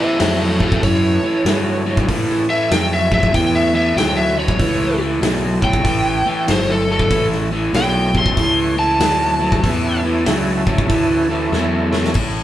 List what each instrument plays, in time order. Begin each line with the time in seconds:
Already playing: overdriven electric guitar A2 E3, tonewheel organ E3 A3 C#4 A4, electric slide guitar C5
0.00 electric slide guitar E5
0.19 fingered electric bass F2, overdriven electric guitar A2 F#3, electric slide guitar C5 E5, snare, open hi-hat
0.40 electric slide guitar A4 C#5
0.60 overdriven electric guitar A2 F#3, electric slide guitar A4 C#5, kick
0.72 kick
0.83 fingered electric bass F#2, overdriven electric guitar A2 E3, electric slide guitar C#5, kick, open hi-hat
1.22 overdriven electric guitar A2 E3, muted fingered electric bass stroke
1.45 fingered electric bass G2, overdriven electric guitar A2 F#3, snare, open hi-hat
1.86 overdriven electric guitar A2 F#3
1.97 kick, snare
2.07 overdriven electric guitar A2 E3, fingered electric bass A2, tonewheel organ F3 A#3 D4 A#4, kick, open hi-hat
2.30 tonewheel organ E3 A3 C#4 A4, snare
2.49 overdriven electric guitar A2 E3, electric slide guitar E5
2.71 fingered electric bass F2, overdriven electric guitar A2 F#3, electric slide guitar G5, snare, open hi-hat
2.93 electric slide guitar E5
3.11 overdriven electric guitar A2 F#3, electric slide guitar E5, kick
3.23 kick
3.33 fingered electric bass E2, overdriven electric guitar A2 E3, electric slide guitar G5, kick, open hi-hat
3.55 electric slide guitar E5
3.73 overdriven electric guitar A2 E3, electric slide guitar E5
3.96 fingered electric bass D2, overdriven electric guitar A2 F#3, electric slide guitar G5, snare, open hi-hat
4.17 electric slide guitar E5
4.36 overdriven electric guitar A2 F#3, electric slide guitar C#5
4.48 kick
4.58 fingered electric bass C#2, overdriven electric guitar A2 E3, tonewheel organ E3 A3 C#4 A4, kick, open hi-hat
4.81 snare
4.98 overdriven electric guitar A2 E3
5.21 fingered electric bass B1, overdriven electric guitar A2 F#3, snare, open hi-hat
5.61 overdriven electric guitar A2 F#3, electric slide guitar G5, kick
5.73 kick
5.84 fingered electric bass A1, overdriven electric guitar A2 E3, kick, open hi-hat
6.26 overdriven electric guitar A2 E3, muted fingered electric bass stroke
6.47 fingered electric bass G1, overdriven electric guitar A2 F#3, electric slide guitar C5, snare, open hi-hat
6.71 electric slide guitar A4
6.88 overdriven electric guitar A2 F#3
6.92 electric slide guitar A4
6.99 kick
7.10 fingered electric bass A1, overdriven electric guitar A2 E3, tonewheel organ E3 A3 C#4 A4, kick, open hi-hat
7.32 snare
7.51 overdriven electric guitar A2 E3
7.73 fingered electric bass B1, overdriven electric guitar A2 F#3, electric slide guitar G5, snare, open hi-hat
8.14 overdriven electric guitar A2 F#3, kick
8.19 electric slide guitar C6
8.26 kick
8.37 fingered electric bass C#2, overdriven electric guitar A2 E3, kick, open hi-hat
8.77 overdriven electric guitar A2 E3, electric slide guitar A5
9.00 fingered electric bass D2, overdriven electric guitar A2 F#3, snare, open hi-hat
9.40 overdriven electric guitar A2 F#3
9.52 kick, snare
9.63 fingered electric bass E2, overdriven electric guitar A2 E3, tonewheel organ A3 C#4 E4 A4, kick, open hi-hat
10.04 overdriven electric guitar A2 E3
10.25 fingered electric bass C#2, overdriven electric guitar A2 F#3, snare, open hi-hat
10.65 overdriven electric guitar A2 F#3, kick
10.78 kick
10.88 fingered electric bass D2, overdriven electric guitar A2 E3, kick, open hi-hat
11.29 overdriven electric guitar A2 E3
11.52 fingered electric bass E2, overdriven electric guitar A2 F#3, snare
11.91 overdriven electric guitar A2 F#3, snare
12.04 snare
12.14 fingered electric bass A1, overdriven electric guitar A2, kick, crash